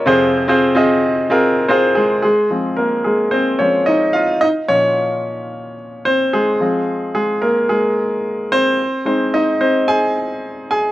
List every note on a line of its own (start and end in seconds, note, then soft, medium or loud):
0.06 2.20 F2 medium
0.06 2.20 C3 medium
0.06 0.37 C4 medium
0.06 0.37 F4 medium
0.06 0.37 G#4 medium
0.06 0.37 C5 medium
0.48 0.68 C4 medium
0.48 0.68 F4 medium
0.48 0.68 G#4 medium
0.48 0.68 C5 medium
0.75 1.14 C4 medium
0.75 1.15 F4 medium
0.75 1.15 G#4 medium
0.75 1.15 D#5 medium
1.30 1.60 C4 medium
1.30 1.60 F4 medium
1.30 1.61 G#4 medium
1.30 1.61 A#4 medium
1.70 1.96 C4 medium
1.70 2.12 F4 medium
1.70 1.94 G#4 medium
1.70 2.12 C5 medium
1.95 2.22 G#3 medium
1.95 2.21 G#4 medium
2.22 2.49 G#3 medium
2.22 2.74 G#4 medium
2.50 3.58 F3 soft
2.50 3.05 G#3 soft
2.50 3.32 C4 soft
2.77 2.85 A#3 medium
2.77 2.83 A#4 medium
3.04 3.31 G#3 medium
3.04 3.33 G#4 medium
3.31 3.59 C4 medium
3.31 3.60 C5 medium
3.59 3.85 F3 soft
3.59 3.85 G#3 soft
3.59 3.85 C4 soft
3.59 3.86 C#4 medium
3.59 3.85 C#5 medium
3.86 4.13 D#4 medium
3.86 4.12 D#5 medium
4.13 4.40 F4 medium
4.13 4.42 F5 medium
4.41 4.49 D#4 medium
4.41 4.47 D#5 medium
4.68 6.56 A#2 soft
4.68 6.56 F3 soft
4.68 6.57 C#4 medium
4.68 5.74 C#5 medium
6.05 6.32 C4 medium
6.05 6.34 C5 medium
6.33 6.59 G#3 medium
6.33 7.13 G#4 medium
6.60 7.38 F3 soft
6.60 7.14 G#3 soft
6.60 7.39 C4 medium
7.15 7.41 G#3 medium
7.15 7.40 G#4 medium
7.42 7.68 A#3 medium
7.42 7.67 A#4 medium
7.69 8.48 G#3 medium
7.69 8.54 G#4 medium
8.52 9.03 C4 medium
8.52 9.05 C5 loud
9.05 9.43 G#3 soft
9.05 9.32 C4 medium
9.05 9.33 D#4 soft
9.05 9.34 C5 medium
9.34 9.59 D#4 medium
9.34 9.62 D#5 medium
9.61 9.86 C4 medium
9.61 9.86 C5 medium
9.88 10.66 G#4 medium
9.88 10.69 G#5 medium
10.71 10.92 G#4 medium
10.71 10.92 G#5 medium